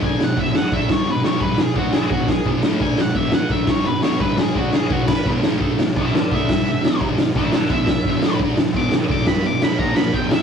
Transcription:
0.02 D3 A3 D4 G#5, kick
0.20 E2 B2 F#5, snare, open hi-hat
0.36 E2 B2 E3 E5, kick
0.55 F#5, muted distorted electric guitar stroke, snare, open hi-hat
0.71 D3 A3 D4 E5, kick
0.88 G2 D3 G3 C#5, kick, snare, open hi-hat
1.07 E2 B2 B4
1.24 E2 B2 E3 C#5, snare, open hi-hat
1.41 G2 D3 G3 B4, kick
1.58 E2 B2 G#4, snare, open hi-hat
1.76 D3 A3 D4 F#4, kick
1.93 G#4, muted distorted electric guitar stroke, snare, open hi-hat
2.11 E2 B2 E3 F#4, kick
2.28 G#4, kick, snare, open hi-hat
2.45 E2 B2 E3, kick
2.62 A2 E3 A3, snare, open hi-hat
2.81 D3 A3 D4 G#5, kick
2.98 E2 B2 F#5, snare, open hi-hat
3.15 E2 B2 E3 E5, kick
3.32 F#5, muted distorted electric guitar stroke, snare, open hi-hat
3.50 D3 A3 D4 E5, kick
3.67 G2 D3 G3 C#5, kick, snare, open hi-hat
3.86 E2 B2 B4
4.02 E2 B2 E3 C#5, snare, open hi-hat
4.19 G2 D3 G3 B4, kick
4.38 E2 B2 G#4, snare, open hi-hat
4.54 D3 A3 D4 F#4, kick
4.72 G#4, muted distorted electric guitar stroke, snare, open hi-hat
4.89 E2 B2 E3 F#4, kick
5.08 B4, kick, snare, crash
5.26 E2 B2 E3, kick
5.43 A2 E3 A3, snare, open hi-hat
5.59 D3 A3 D4, kick
5.79 E2 B2, snare, open hi-hat
5.96 E2 B2 E3 B4 G#5, kick
6.14 D5 F#5, muted distorted electric guitar stroke, snare, open hi-hat
6.32 D3 A3 D4 E5, kick
6.49 G2 D3 G3, kick, snare, open hi-hat
6.67 E2 B2
6.83 E2 B2 E3, snare, open hi-hat
7.00 G2 D3 G3, kick
7.18 E2 B2, snare, open hi-hat
7.35 D3 A3 D4 B4 G#5, kick
7.52 D5 F#5, muted distorted electric guitar stroke, snare, open hi-hat
7.70 E2 B2 E3 E5, kick
7.87 kick, snare, open hi-hat
8.05 E2 B2 E3, kick
8.22 A2 E3 A3, snare, open hi-hat
8.40 D3 A3 D4, kick
8.57 E2 B2, snare, open hi-hat
8.74 E2 B2 E3 D6, kick
8.91 muted distorted electric guitar stroke, snare, open hi-hat
9.08 D3 A3 D4 D6, kick
9.25 G2 D3 G3 B5, kick, snare, open hi-hat
9.44 E2 B2 D6
9.61 E2 B2 E3 B5, snare, open hi-hat
9.79 A#2 F3 A#3 A#5, kick
9.96 B5, snare, open hi-hat
10.14 E2 B2 E3 G5, kick
10.31 E5, snare, open hi-hat

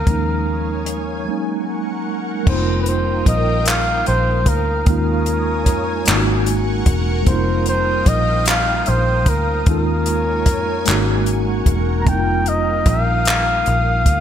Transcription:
Already playing: A#4 F5 D#6
0.06 D#2 F3 G3 A#3 C#4 C#5 G#5, kick, closed hi-hat
0.11 G#3 D#4
0.86 closed hi-hat
1.25 F#3 G#3 A#3 C#4 A#4 F#5 C#6
1.30 D#4
2.43 G3 A#3 A#4 F5 G5 D#6, kick, crash
2.47 F1 C4 D#4 C5
2.53 F4
2.82 B4
2.86 C5, closed hi-hat
3.26 A#1 D#5, kick, closed hi-hat
3.66 F5, clap, closed hi-hat
4.06 A#1 C5, closed hi-hat
4.46 D2 A#4, kick, closed hi-hat
4.86 D#2 G#3 A#3 C#4 D#4 A#4 C#5 G#5 D#6, kick, closed hi-hat
4.91 F4
5.26 closed hi-hat
5.66 F2, kick, closed hi-hat
6.05 G#1 G#3 A#3 C#4 D#4 A#4 F#5 C#6, clap, closed hi-hat
6.10 F4
6.17 F#4
6.46 closed hi-hat
6.86 E1, kick, closed hi-hat
7.23 G3 A#3 D#6, closed hi-hat
7.27 F1 C4 D#4 C5 F5 G5, kick
7.32 F4
7.66 C5, closed hi-hat
8.06 A#1 D#5, kick, closed hi-hat
8.46 F5, clap, closed hi-hat
8.86 A#1 C5, closed hi-hat
9.26 D2 A#4, kick, closed hi-hat
9.65 D#2 G#3 A#3 C#4 D#4 C#5 G#5, kick, closed hi-hat
9.70 F4 A#4
10.06 closed hi-hat
10.46 F2, kick, closed hi-hat
10.85 G#1 G#3 A#3 C4 D#4 A#4 F#5 C#6, clap, closed hi-hat
10.90 C#4 F#4
11.26 closed hi-hat
11.66 E1, kick, closed hi-hat
12.01 G3 A#5
12.05 F1 A#3 C4 F5 G5 D#6, kick, closed hi-hat
12.10 D#4 E4
12.19 F4
12.46 D#5, closed hi-hat
12.86 A#1 F5, kick, closed hi-hat
13.25 clap, closed hi-hat
13.66 A#1, closed hi-hat
14.06 D2, kick, closed hi-hat

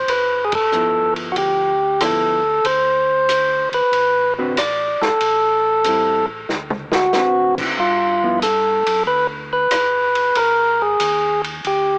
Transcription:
Already playing: C5
0.08 G1 B4, ride
0.45 G#4
0.52 A4, kick, ride
0.72 F3 B3 E4, hi-hat pedal
1.16 ride
1.32 D2 F#4, ride
1.38 G4
2.00 F3 B3 E4 A4, cross-stick, hi-hat pedal, ride
2.64 D2 C5, ride
3.29 hi-hat pedal, ride
3.72 D2 B4, ride
3.92 A1, ride
4.38 D3 C4 F#4 B4
4.57 D5, cross-stick, hi-hat pedal, ride
5.01 A1 A4, snare
5.21 A1, ride
5.84 G3 C4, hi-hat pedal, ride
5.88 E4
6.49 D2, snare
6.70 mid tom
6.92 F#4, snare
7.13 D3 C4 F#4 B4, snare, hi-hat pedal
7.58 kick, crash
7.78 G2 F4
8.23 F3 B3 E4
8.42 A4, hi-hat pedal, ride
8.86 F#2, ride
9.07 D2 B4
9.53 B4
9.71 G1, cross-stick, hi-hat pedal, ride
10.15 ride
10.35 G#1 A#4, ride
10.82 G#4
11.00 D#2, hi-hat pedal, ride
11.44 ride
11.64 D2 G4, ride

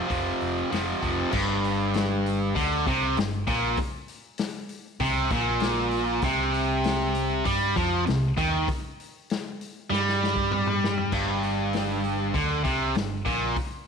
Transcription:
0.08 F1 F2 C3 F3, kick, open hi-hat
0.41 F1, open hi-hat
0.71 F1 F2 C3 F3, snare, open hi-hat
1.01 F1 F2 C3 F3, kick, open hi-hat
1.31 G1 G2, kick, crash
1.64 open hi-hat
1.94 snare, open hi-hat
2.26 open hi-hat
2.55 D2 D3, kick, open hi-hat
2.86 C2 C3, kick, open hi-hat
3.17 G1 G2, snare, open hi-hat
3.47 A#1 A#2, kick, open hi-hat
3.77 kick, open hi-hat
4.08 open hi-hat
4.38 snare, open hi-hat
4.69 open hi-hat
5.00 C2 C3, kick, open hi-hat
5.30 A#1 A#2, kick, open hi-hat
5.60 snare, open hi-hat
5.91 open hi-hat
6.22 C2 C3, kick, open hi-hat
6.54 open hi-hat
6.84 snare, open hi-hat
7.15 open hi-hat
7.44 G2 G3, kick, open hi-hat
7.76 F2 F3, kick, open hi-hat
8.06 C2 C3, snare, open hi-hat
8.37 D#2 D#3, kick, open hi-hat
8.68 kick, open hi-hat
9.00 open hi-hat
9.30 snare, open hi-hat
9.61 open hi-hat
9.90 G2 G3, snare
10.09 snare
10.23 snare
10.36 kick
10.51 mid tom
10.67 mid tom
10.84 snare
10.98 floor tom
11.12 G1 G2, kick, crash
11.43 open hi-hat
11.73 snare, open hi-hat
12.04 open hi-hat
12.34 D2 D3, kick, open hi-hat
12.64 C2 C3, kick, open hi-hat
12.95 G1 G2, snare, open hi-hat
13.25 A#1 A#2, kick, open hi-hat
13.56 kick, open hi-hat

